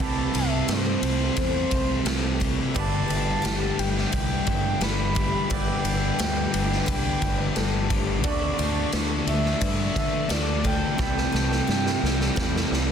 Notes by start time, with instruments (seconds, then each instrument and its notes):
Already playing: string machine A4
0.00 fingered electric bass C2, distorted electric guitar C3 G3 C4, clean electric guitar C3 E3 A3 E4 G4, twelve-string acoustic guitar B4, string machine E5 G5 A5, soft synth lead A5, kick
0.34 fingered electric bass C2, twelve-string acoustic guitar A4, soft synth lead E5, ride
0.68 fingered electric bass G2, twelve-string acoustic guitar G4, snare, ride
0.72 soft synth lead C5
1.02 fingered electric bass C2, distorted electric guitar C3 G3 C4, ride
1.37 fingered electric bass E2, twelve-string acoustic guitar C5, kick, ride
1.41 soft synth lead C5
1.71 fingered electric bass C2, kick, ride
2.05 fingered electric bass C2, distorted electric guitar C3 G3 C4, twelve-string acoustic guitar A4, snare, ride
2.40 twelve-string acoustic guitar G4, kick, ride
2.74 fingered electric bass G1, distorted electric guitar G2 D3 G3, clean electric guitar G3 B3 E4 B4 D5, twelve-string acoustic guitar B4, string machine B4 G5 D6, soft synth lead A5, kick, ride
3.08 fingered electric bass G1, twelve-string acoustic guitar A4, ride
3.42 fingered electric bass G1, twelve-string acoustic guitar G4, snare, ride
3.78 fingered electric bass G1, distorted electric guitar G2 D3 G3, soft synth lead G5, ride
3.97 snare
4.12 fingered electric bass C2, twelve-string acoustic guitar B4, kick, ride
4.47 fingered electric bass G2, kick, ride
4.81 fingered electric bass G1, distorted electric guitar G2 D3 G3, twelve-string acoustic guitar A4, soft synth lead B5, snare, ride
5.15 twelve-string acoustic guitar G4, kick, ride
5.50 fingered electric bass G1, distorted electric guitar G2 D3 G3, clean electric guitar G3 B3 E4 B4 D5, twelve-string acoustic guitar B4, soft synth lead G5, string machine A5, kick, ride
5.84 fingered electric bass G1, twelve-string acoustic guitar A4, ride
6.19 fingered electric bass D2, twelve-string acoustic guitar G4, snare, ride
6.53 fingered electric bass G1, distorted electric guitar G2 D3 G3, ride
6.72 snare
6.86 fingered electric bass C2, twelve-string acoustic guitar B4, kick, ride
6.91 soft synth lead G5
7.22 fingered electric bass G1, kick, snare, ride
7.55 fingered electric bass G1, distorted electric guitar G2 D3 G3, twelve-string acoustic guitar A4, snare, ride
7.90 twelve-string acoustic guitar G4, kick, ride
8.23 fingered electric bass D2, clean electric guitar D3 A3 D4 F#4 A4, distorted electric guitar D3 A3, string machine A4 D5 A5, twelve-string acoustic guitar B4, soft synth lead D5, kick, ride
8.27 distorted electric guitar D4
8.58 fingered electric bass D2, twelve-string acoustic guitar A4, ride
8.92 fingered electric bass D2, twelve-string acoustic guitar F#4, snare, ride
9.27 fingered electric bass D2, distorted electric guitar D3 A3 D4, soft synth lead E5, ride
9.45 snare
9.61 fingered electric bass G2, twelve-string acoustic guitar B4, soft synth lead E5, kick, ride
9.96 fingered electric bass D3, kick, snare, ride
10.29 fingered electric bass D2, distorted electric guitar D3 A3 D4, twelve-string acoustic guitar A4, soft synth lead D5, snare, ride
10.64 twelve-string acoustic guitar A4, soft synth lead G5, kick, ride
10.98 fingered electric bass C2, distorted electric guitar C3 G3 C4, clean electric guitar C3 E3 G3 C4 E4, twelve-string acoustic guitar B4, string machine E5 G5 A5, kick, snare
11.02 clean electric guitar A4
11.18 snare
11.32 fingered electric bass C2, twelve-string acoustic guitar A4, snare
11.52 snare
11.67 fingered electric bass G2, twelve-string acoustic guitar G4, snare
11.86 snare
12.02 fingered electric bass C2, distorted electric guitar C3 G3 C4, snare
12.21 snare
12.36 fingered electric bass E2, twelve-string acoustic guitar B4, kick, snare
12.56 snare
12.71 fingered electric bass C2, snare